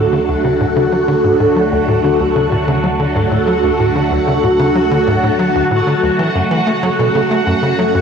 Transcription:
Already playing: D2 D3 F#3 A3 F#4 A4 F#5
0.13 D3
0.28 D2
0.44 C#3
0.60 A2
0.76 C#3
0.92 F#3
1.08 D3
1.24 G#2
1.40 A2
1.56 F#3
1.72 D2
1.88 A2
2.04 D3
2.20 D2
2.36 C#3
2.52 A2
2.68 C#3
2.84 F#3
3.00 D3
3.16 G#2
3.31 A2
3.47 F#3
3.64 D2
3.80 A2
3.96 D3
4.11 D2
4.28 C#3
4.43 A2
4.59 C#3
4.75 F#3
4.91 D3
5.07 G#2
5.23 A2
5.39 F#3
5.55 D2
5.71 A2
5.87 D3
6.03 D2
6.19 F#2 C#3 E3 A4
6.35 F#2
6.51 E3
6.67 A3
6.83 F#3
6.99 B2
7.15 C#3
7.31 A3
7.46 F#2
7.63 C#3
7.79 F#3
7.95 F#2

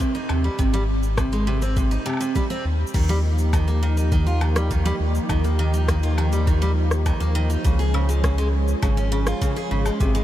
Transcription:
0.00 C3, kick, cabasa
0.15 D#4, cabasa
0.29 D#2 C3, low woodblock
0.44 G3
0.59 G#1 C3, kick, cabasa
0.73 G3, cabasa
1.03 cabasa
1.18 C3, kick, cross-stick, cabasa, low woodblock
1.32 G#3, cabasa
1.47 C3
1.62 C4, cabasa
1.77 C3, kick, cabasa
1.91 D#4, cabasa
2.06 C3, low woodblock
2.10 low woodblock
2.13 low woodblock
2.17 C3, cabasa, low woodblock
2.35 G3, kick, cabasa
2.50 C4, cabasa
2.65 D#2
2.87 cabasa
2.94 D#2 D#3 F3 A#3 D#4 G4, kick, crash, cabasa
3.09 G3, cabasa
3.38 cabasa
3.53 D#3, kick, cabasa, low woodblock
3.68 A#3, cabasa
3.83 D#3
3.97 D#4, cabasa
4.12 D#3, kick, cabasa
4.27 F4, cabasa
4.41 D#3, low woodblock
4.56 G3, cross-stick, cabasa
4.71 D#3, kick, cabasa
4.85 G3, cabasa
5.00 D#2
5.15 cabasa
5.29 D#2 D#3, kick, cabasa, low woodblock
5.44 A#3, cabasa
5.59 D#3
5.74 D#4, cabasa
5.88 D#3, kick, cross-stick, cabasa
6.03 F4, cabasa
6.18 D#3, low woodblock
6.32 G3, cabasa
6.47 D#3, kick, cabasa
6.62 G3, cabasa
6.91 cross-stick, cabasa
7.06 D#3, kick, cabasa, low woodblock
7.20 D#2 A#3, cabasa
7.35 D#3
7.50 D#4, cabasa
7.64 C#2 C#3 G#3 C#4 G#4, kick, cabasa
7.79 G#4, cabasa
7.94 C#3, low woodblock
8.09 G#3, cabasa
8.24 C#3, kick, cross-stick, cabasa
8.38 G#3, cabasa
8.68 cabasa
8.82 G#1 C#3, kick, cabasa, low woodblock
8.97 C#4, cabasa
9.12 C#3
9.27 F4, cross-stick, cabasa
9.41 C#3, kick, cabasa
9.56 G#4, cabasa
9.71 G#1 C#3
9.86 G#3, cabasa, low woodblock
10.00 G#1 C3 D#3 C4, kick, cabasa
10.15 G#3, cabasa

